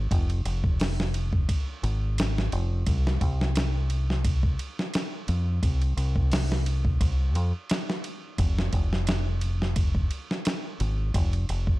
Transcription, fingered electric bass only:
0.11 0.42 F1 loud
0.45 1.45 F1 medium
1.84 2.49 G#1 loud
2.52 2.83 F1 loud
2.87 3.18 C2 loud
3.22 4.56 C2 medium
5.29 5.59 F2 loud
5.63 5.93 C2 loud
5.97 6.97 C2 loud
7.01 7.35 C2 medium
7.35 7.51 F2 medium
8.39 8.69 F1 loud
8.73 10.08 F1 medium
10.80 11.11 G#1 loud
11.15 11.45 F1 loud
11.49 11.79 F1 medium

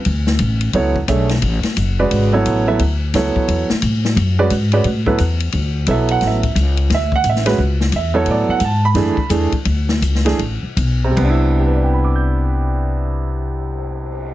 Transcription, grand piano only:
0.74 0.94 F#3 medium
0.74 0.94 B3 medium
0.74 0.94 E4 medium
0.74 0.94 A4 soft
0.74 0.94 C#5 medium
1.08 1.28 A3 medium
1.08 1.28 D4 medium
1.08 1.28 G#4 soft
1.08 1.28 C#5 medium
1.08 1.28 E5 medium
1.99 2.31 C#3 medium
1.99 2.31 G#3 medium
1.99 2.31 F#4 medium
1.99 2.31 B4 medium
1.99 2.31 D5 medium
2.33 2.65 F#3 medium
2.33 2.65 B3 medium
2.33 2.65 E4 medium
2.33 2.65 A4 medium
2.33 2.66 C#5 medium
2.67 2.79 F#3 medium
2.67 2.79 B3 medium
2.67 2.79 E4 medium
2.67 2.79 A4 medium
2.67 2.79 E5 medium
3.15 3.66 F#3 medium
3.15 3.66 B3 soft
3.15 3.66 E4 soft
3.15 3.66 A4 medium
3.15 3.66 C#5 medium
4.39 4.50 G#3 medium
4.39 4.50 C#4 medium
4.39 4.50 F#4 medium
4.39 4.50 B4 medium
4.39 4.50 D5 medium
4.73 4.84 G#3 medium
4.73 4.84 C#4 medium
4.73 4.84 F#4 medium
4.73 4.84 B4 medium
4.73 4.84 D5 medium
5.06 5.18 F#3 medium
5.06 5.18 B3 medium
5.06 5.18 E4 medium
5.06 5.18 A4 medium
5.06 5.18 B4 medium
5.88 6.39 F#3 medium
5.88 6.39 B3 medium
5.88 6.39 E4 medium
5.88 6.39 A4 medium
5.88 6.10 E5 medium
6.11 6.22 F#5 medium
6.27 6.56 E5 medium
6.94 7.13 E5 medium
7.16 7.26 F#5 medium
7.29 7.59 E5 medium
7.46 7.57 G#3 medium
7.46 7.57 C#4 medium
7.46 7.57 F#4 medium
7.46 7.57 B4 medium
7.96 8.15 E5 medium
8.14 8.58 F#3 medium
8.14 8.58 B3 medium
8.14 8.58 E4 medium
8.14 8.58 A4 medium
8.14 8.27 C#5 medium
8.31 8.50 D5 medium
8.50 8.61 F#5 medium
8.65 8.84 A5 medium
8.85 9.28 B5 loud
8.95 9.15 E3 medium
8.95 9.15 A3 medium
8.95 9.15 D4 medium
8.95 9.15 G#4 medium
9.30 9.50 E3 medium
9.30 9.50 A3 medium
9.30 9.51 D4 medium
9.30 9.50 G#4 medium
10.25 10.37 E3 medium
10.25 10.38 A3 medium
10.25 10.38 D4 medium
10.25 10.38 G#4 medium
11.04 14.34 C3 medium
11.11 14.34 G3 medium
11.17 14.34 B3 medium
11.24 14.34 D4 medium
11.30 14.34 E4 medium
11.59 14.34 G4 soft
11.66 14.34 B4 soft
11.74 14.34 D5 soft
11.84 14.34 G5 soft
11.94 14.34 B5 soft
12.04 14.34 D6 soft
12.16 14.34 G6 soft

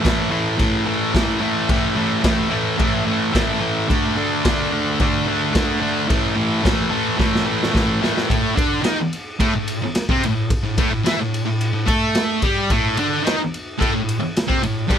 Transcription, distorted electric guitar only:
0.02 0.30 A2 loud
0.02 0.31 E3 loud
0.02 0.31 A3 loud
0.30 0.57 A2 loud
0.30 0.57 E3 loud
0.30 0.59 A3 medium
0.58 0.85 A2 loud
0.58 0.85 E3 medium
0.58 0.86 A3 medium
0.86 1.12 A2 medium
0.86 1.13 E3 medium
0.86 1.14 A3 medium
1.14 1.39 A2 loud
1.14 1.40 E3 medium
1.14 1.41 A3 loud
1.40 1.68 A2 medium
1.40 1.68 E3 medium
1.40 1.70 A3 loud
1.69 1.95 A2 loud
1.69 1.95 E3 loud
1.69 1.97 A3 loud
1.96 2.21 A2 loud
1.96 2.22 E3 loud
1.96 2.24 A3 loud
2.23 2.48 A2 medium
2.23 2.49 E3 medium
2.23 2.50 A3 medium
2.50 2.76 A2 loud
2.50 2.77 E3 loud
2.50 2.78 A3 loud
2.78 3.04 A2 medium
2.78 3.05 E3 loud
2.78 3.06 A3 loud
3.05 3.31 A2 medium
3.05 3.32 E3 loud
3.05 3.33 A3 medium
3.32 3.59 A2 medium
3.32 3.59 E3 loud
3.32 3.61 A3 loud
3.60 3.87 A2 medium
3.60 3.87 E3 loud
3.60 3.89 A3 loud
3.89 4.15 D3 medium
3.89 4.17 A3 loud
3.89 4.16 D4 loud
4.16 4.43 D3 loud
4.16 4.44 A3 loud
4.16 4.44 D4 loud
4.45 4.70 D3 medium
4.45 4.72 A3 medium
4.45 4.72 D4 loud
4.72 4.99 D3 medium
4.72 5.01 A3 loud
4.72 5.00 D4 loud
5.00 5.26 D3 medium
5.00 5.27 A3 loud
5.00 5.27 D4 loud
5.27 5.52 D3 medium
5.27 5.53 A3 loud
5.27 5.54 D4 medium
5.54 5.80 D3 medium
5.54 5.81 A3 medium
5.54 5.81 D4 loud
5.81 6.07 D3 loud
5.81 6.09 A3 medium
5.81 6.08 D4 loud
6.08 6.34 A2 medium
6.08 6.35 E3 loud
6.08 6.36 A3 loud
6.36 6.61 A2 loud
6.36 6.63 E3 medium
6.36 6.64 A3 loud
6.63 6.89 A2 medium
6.63 6.90 E3 loud
6.63 6.91 A3 loud
6.90 7.16 A2 medium
6.90 7.17 E3 medium
6.90 7.18 A3 medium
7.17 7.44 A2 medium
7.17 7.44 E3 loud
7.17 7.45 A3 loud
7.45 7.71 A2 medium
7.45 7.71 E3 loud
7.45 7.73 A3 loud
7.72 8.00 A2 medium
7.72 8.01 E3 loud
7.72 8.02 A3 loud
8.01 8.28 A2 medium
8.01 8.28 E3 medium
8.01 8.29 A3 loud
8.29 8.55 A2 medium
8.29 8.56 A3 medium
8.56 8.82 D3 medium
8.56 8.83 D4 loud
8.82 8.96 D#3 loud
8.82 8.97 D#4 loud
8.98 muted distorted electric guitar stroke medium
9.40 9.53 A2 loud
9.40 9.53 A3 loud
9.55 9.76 A2 medium
9.82 muted distorted electric guitar stroke medium
10.09 10.22 C3 medium
10.09 10.23 C4 loud
10.24 10.45 A2 medium
10.64 10.77 A2 medium
10.78 10.90 A2 medium
10.78 10.91 A3 loud
10.91 11.04 A2 medium
11.05 11.18 E3 medium
11.05 11.19 E4 loud
11.18 11.41 A2 medium
11.45 11.68 A2 medium
11.73 11.87 A2 medium
11.86 12.41 A3 medium
11.86 12.42 A4 loud
12.43 12.70 G3 loud
12.43 12.70 G4 loud
12.70 12.97 A2 loud
12.70 12.97 A3 loud
12.98 13.23 D3 loud
12.98 13.24 D4 loud
13.23 13.37 D#3 medium
13.23 13.38 D#4 loud
13.39 muted distorted electric guitar stroke medium
13.78 13.92 A2 loud
13.78 13.93 A3 loud
13.93 14.16 A2 medium
14.19 muted distorted electric guitar stroke medium
14.47 14.61 C3 medium
14.47 14.62 C4 loud
14.62 14.84 A2 medium
14.88 14.98 G2 loud
14.88 14.98 G3 medium

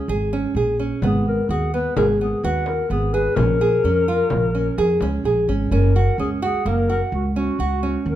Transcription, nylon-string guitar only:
0.09 0.30 G#4 medium
0.33 0.53 C#4 medium
0.56 0.77 G#4 medium
0.79 1.00 C#4 medium
1.03 1.44 B3 medium
1.50 1.71 F#4 medium
1.74 1.94 B3 medium
1.97 2.17 G#4 medium
2.21 2.41 B3 medium
2.44 2.85 F#4 medium
2.91 3.11 B3 medium
3.14 3.34 G#4 medium
3.37 3.58 C#4 medium
3.61 3.81 G#4 medium
3.85 4.05 C#4 medium
4.08 4.49 F4 medium
4.55 4.75 C#4 medium
4.78 4.99 G#4 medium
5.02 5.22 C#4 medium
5.25 5.46 G#4 medium
5.49 5.69 C#4 medium
5.72 5.92 C#4 medium
5.96 6.16 F#4 medium
6.19 6.39 C#4 medium
6.42 6.63 F#4 medium
6.66 6.86 A#3 medium
6.90 7.30 F#4 medium
7.36 7.56 C#4 medium
7.60 7.80 F#4 medium
7.83 8.15 C#4 medium

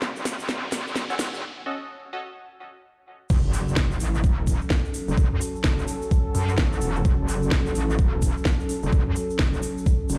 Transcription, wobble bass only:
0.00 0.14 F#1 loud
0.16 0.47 F#1 medium
0.49 0.84 F#1 loud
0.87 0.94 F#1 loud
0.96 1.31 F#1 medium
1.33 1.43 F#1 loud
3.30 3.42 F#1 medium
3.44 3.75 F#1 loud
3.77 3.99 F#1 medium
4.00 4.22 A1 loud
4.24 4.59 E1 loud
5.08 5.30 F#1 loud
5.32 5.39 F#2 loud
5.64 5.86 F#1 loud
6.35 6.57 F#2 loud
6.58 6.80 A1 loud
6.82 7.04 E1 loud
7.05 7.17 F#1 loud
7.19 7.50 F#1 loud
7.52 7.74 F#1 medium
7.75 7.97 A1 loud
7.99 8.34 E1 loud
8.83 9.05 F#1 loud
9.07 9.15 F#2 medium
9.39 9.61 F#1 loud
10.10 10.18 F#1 medium

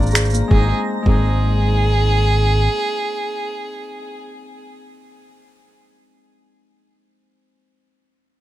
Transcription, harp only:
0.00 0.57 F3 medium
0.00 0.47 G#3 medium
0.00 0.32 A#3 medium
0.00 0.60 D4 medium
0.00 0.15 C5 medium
0.00 0.35 D5 medium
0.15 0.59 C5 medium
0.33 3.54 A#3 medium
0.48 1.02 G#3 medium
0.48 1.05 C4 medium
0.54 1.08 D#4 medium
0.54 1.11 G#4 medium
0.59 1.13 C5 medium
1.02 6.88 G#3 medium
1.02 6.16 C4 medium
1.09 5.68 D#4 medium
1.09 4.98 G#4 medium
1.14 4.96 C5 medium

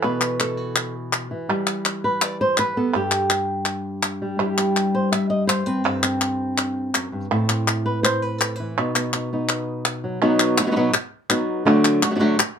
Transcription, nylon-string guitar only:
0.00 1.31 B2 medium
0.00 1.31 E3 medium
0.00 0.60 E4 soft
0.00 0.39 A4 medium
0.04 0.57 B4 medium
0.41 0.95 A4 medium
0.57 1.49 F#4 medium
1.31 2.77 E3 medium
1.49 4.22 G3 medium
2.04 2.22 B4 medium
2.22 2.40 D5 medium
2.41 2.59 C5 loud
2.59 2.95 B4 medium
2.77 2.93 B3 medium
2.77 3.31 A4 medium
2.95 5.85 G2 medium
2.95 4.40 G4 medium
4.22 4.40 G3 medium
4.40 5.83 G3 medium
4.40 4.58 E4 soft
4.40 5.66 G4 soft
4.58 6.03 E4 soft
4.95 5.12 C5 medium
5.12 5.29 E5 medium
5.30 5.47 D#5 medium
5.47 5.84 C5 medium
5.66 6.04 C4 medium
5.66 6.21 B4 medium
5.84 6.93 G2 medium
5.84 7.30 A4 medium
6.04 7.29 C4 soft
6.94 7.12 F#2 medium
7.12 7.31 G2 medium
7.31 8.74 A2 medium
7.31 7.49 C4 soft
7.31 8.75 E4 soft
7.31 7.85 A4 soft
7.50 8.75 C4 soft
7.86 8.03 B4 medium
8.03 8.22 C5 medium
8.22 8.38 B4 loud
8.38 8.56 A4 medium
8.56 10.21 B4 medium
8.60 8.77 E3 soft
8.78 10.20 B2 medium
8.78 8.96 B3 soft
8.78 9.14 D#4 soft
8.97 9.32 B3 soft
9.15 9.32 D#4 soft
9.33 10.21 B3 soft
9.33 10.21 D#4 soft
10.04 10.20 F#3 medium
10.22 10.57 B2 medium
10.22 10.58 F#3 medium
10.22 10.58 B3 medium
10.22 10.58 D#4 medium
10.22 10.57 F#4 medium
10.58 10.62 B3 soft
10.58 10.63 D#4 soft
10.58 10.62 F#4 soft
10.62 10.66 F#3 soft
10.62 10.67 D#4 soft
10.62 10.67 F#4 medium
10.67 10.70 F#3 medium
10.67 10.71 B3 medium
10.67 10.71 D#4 medium
10.67 10.71 F#4 medium
10.71 10.75 F#3 medium
10.71 10.75 B3 medium
10.71 10.76 D#4 medium
10.71 10.76 F#4 medium
10.76 10.92 B2 medium
10.76 10.92 F#3 medium
10.76 10.92 B3 medium
10.76 10.93 D#4 medium
10.76 10.93 F#4 medium
10.93 muted nylon-string guitar stroke medium
11.29 11.65 F#3 medium
11.29 11.66 B3 medium
11.29 11.66 D#4 medium
11.29 11.65 F#4 medium
11.65 12.02 D3 medium
11.65 12.02 F#3 medium
11.65 12.02 A3 medium
11.65 12.02 D4 medium
11.65 12.01 F#4 medium
12.03 12.10 A3 soft
12.03 12.10 D4 soft
12.03 12.11 F#4 medium
12.11 12.14 F#3 soft
12.11 12.15 A3 soft
12.11 12.15 D4 soft
12.11 12.15 F#4 soft
12.15 12.38 D3 medium
12.15 12.19 F#3 medium
12.15 12.19 A3 medium
12.15 12.19 D4 medium
12.15 12.20 F#4 medium
12.20 12.38 F#3 medium
12.20 12.38 A3 medium
12.20 12.39 D4 medium
12.20 12.39 F#4 medium
12.39 muted nylon-string guitar stroke medium

